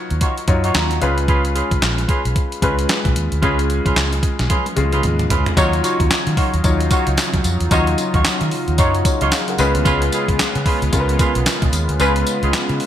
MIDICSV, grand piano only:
0, 0, Header, 1, 2, 480
1, 0, Start_track
1, 0, Key_signature, -6, "minor"
1, 0, Tempo, 535714
1, 1150, Time_signature, 4, 2, 24, 8
1, 11525, End_track
2, 0, Start_track
2, 0, Title_t, "Grand piano"
2, 0, Program_c, 0, 0
2, 0, Control_c, 0, 64, 127
2, 0, Note_on_c, 0, 54, 85
2, 0, Note_on_c, 0, 63, 78
2, 0, Note_on_c, 0, 65, 80
2, 0, Note_on_c, 0, 71, 75
2, 0, Note_on_c, 0, 73, 94
2, 128, Note_off_c, 0, 54, 0
2, 130, Note_off_c, 0, 63, 0
2, 132, Note_off_c, 0, 65, 0
2, 162, Note_off_c, 0, 73, 0
2, 427, Note_on_c, 0, 54, 86
2, 431, Note_on_c, 0, 63, 79
2, 434, Note_on_c, 0, 65, 83
2, 438, Note_on_c, 0, 73, 90
2, 671, Note_on_c, 0, 82, 65
2, 894, Note_off_c, 0, 82, 0
2, 900, Note_off_c, 0, 65, 0
2, 907, Note_on_c, 0, 56, 82
2, 908, Note_off_c, 0, 54, 0
2, 910, Note_off_c, 0, 63, 0
2, 910, Note_on_c, 0, 61, 81
2, 912, Note_on_c, 0, 77, 76
2, 914, Note_off_c, 0, 73, 0
2, 914, Note_on_c, 0, 65, 86
2, 917, Note_off_c, 0, 71, 0
2, 917, Note_on_c, 0, 71, 101
2, 919, Control_c, 0, 64, 0
2, 1085, Control_c, 0, 64, 127
2, 1134, Note_off_c, 0, 77, 0
2, 1808, Note_off_c, 0, 56, 0
2, 1809, Note_off_c, 0, 61, 0
2, 1811, Note_off_c, 0, 65, 0
2, 1813, Note_off_c, 0, 71, 0
2, 2346, Note_on_c, 0, 56, 89
2, 2351, Note_on_c, 0, 61, 73
2, 2354, Note_on_c, 0, 65, 76
2, 2358, Note_on_c, 0, 71, 98
2, 3022, Note_off_c, 0, 56, 0
2, 3025, Note_off_c, 0, 61, 0
2, 3026, Note_off_c, 0, 65, 0
2, 3028, Note_off_c, 0, 71, 0
2, 3066, Note_on_c, 0, 56, 87
2, 3070, Note_on_c, 0, 61, 85
2, 3074, Note_on_c, 0, 65, 78
2, 3077, Note_on_c, 0, 68, 101
2, 3967, Note_off_c, 0, 56, 0
2, 3969, Note_off_c, 0, 61, 0
2, 3971, Note_off_c, 0, 65, 0
2, 3973, Note_off_c, 0, 68, 0
2, 4266, Note_on_c, 0, 56, 89
2, 4270, Note_on_c, 0, 61, 72
2, 4274, Note_on_c, 0, 65, 80
2, 4277, Note_on_c, 0, 68, 92
2, 4942, Note_off_c, 0, 56, 0
2, 4944, Note_off_c, 0, 61, 0
2, 4946, Note_off_c, 0, 65, 0
2, 4948, Note_off_c, 0, 68, 0
2, 4987, Note_on_c, 0, 54, 95
2, 4990, Note_on_c, 0, 63, 88
2, 4994, Note_on_c, 0, 65, 83
2, 4998, Note_on_c, 0, 73, 99
2, 5003, Control_c, 0, 64, 0
2, 5178, Control_c, 0, 64, 127
2, 5888, Note_off_c, 0, 54, 0
2, 5889, Note_off_c, 0, 63, 0
2, 5891, Note_off_c, 0, 65, 0
2, 5893, Note_off_c, 0, 73, 0
2, 5948, Note_on_c, 0, 54, 80
2, 5952, Note_on_c, 0, 63, 71
2, 5956, Note_on_c, 0, 65, 68
2, 5959, Note_on_c, 0, 73, 83
2, 6848, Note_off_c, 0, 54, 0
2, 6850, Note_off_c, 0, 63, 0
2, 6852, Note_off_c, 0, 65, 0
2, 6854, Note_off_c, 0, 73, 0
2, 6909, Note_on_c, 0, 54, 89
2, 6912, Note_on_c, 0, 63, 85
2, 6916, Note_on_c, 0, 65, 81
2, 6919, Note_on_c, 0, 75, 103
2, 7809, Note_off_c, 0, 54, 0
2, 7810, Note_off_c, 0, 63, 0
2, 7812, Note_off_c, 0, 65, 0
2, 7814, Note_off_c, 0, 75, 0
2, 7867, Note_on_c, 0, 54, 74
2, 7870, Note_on_c, 0, 63, 75
2, 7874, Note_on_c, 0, 65, 71
2, 7878, Note_on_c, 0, 73, 88
2, 8099, Note_off_c, 0, 73, 0
2, 8106, Note_off_c, 0, 65, 0
2, 8113, Note_on_c, 0, 73, 68
2, 8119, Note_on_c, 0, 65, 56
2, 8248, Note_off_c, 0, 73, 0
2, 8252, Note_off_c, 0, 65, 0
2, 8257, Note_on_c, 0, 75, 72
2, 8262, Note_on_c, 0, 66, 61
2, 8346, Note_off_c, 0, 75, 0
2, 8349, Note_off_c, 0, 66, 0
2, 8353, Note_on_c, 0, 77, 70
2, 8359, Note_on_c, 0, 68, 57
2, 8489, Note_off_c, 0, 77, 0
2, 8492, Note_off_c, 0, 68, 0
2, 8498, Note_on_c, 0, 78, 67
2, 8504, Note_on_c, 0, 70, 56
2, 8588, Note_off_c, 0, 54, 0
2, 8588, Note_on_c, 0, 56, 99
2, 8590, Note_off_c, 0, 63, 0
2, 8592, Note_on_c, 0, 61, 85
2, 8595, Note_on_c, 0, 65, 85
2, 8598, Note_on_c, 0, 71, 104
2, 8603, Control_c, 0, 64, 0
2, 8724, Note_off_c, 0, 78, 0
2, 8727, Note_off_c, 0, 70, 0
2, 8781, Control_c, 0, 64, 127
2, 9488, Note_off_c, 0, 56, 0
2, 9490, Note_off_c, 0, 61, 0
2, 9492, Note_off_c, 0, 65, 0
2, 9493, Note_off_c, 0, 71, 0
2, 9786, Note_on_c, 0, 56, 80
2, 9790, Note_on_c, 0, 61, 72
2, 9794, Note_on_c, 0, 65, 72
2, 9797, Note_on_c, 0, 70, 70
2, 9855, Note_on_c, 0, 71, 85
2, 9863, Note_off_c, 0, 70, 0
2, 10687, Note_off_c, 0, 56, 0
2, 10689, Note_off_c, 0, 61, 0
2, 10691, Note_off_c, 0, 65, 0
2, 10722, Note_off_c, 0, 71, 0
2, 10747, Note_on_c, 0, 56, 91
2, 10750, Note_on_c, 0, 61, 84
2, 10754, Note_on_c, 0, 65, 85
2, 10757, Note_on_c, 0, 71, 107
2, 11525, Note_off_c, 0, 56, 0
2, 11525, Note_off_c, 0, 61, 0
2, 11525, Note_off_c, 0, 65, 0
2, 11525, Note_off_c, 0, 71, 0
2, 11525, End_track
0, 0, End_of_file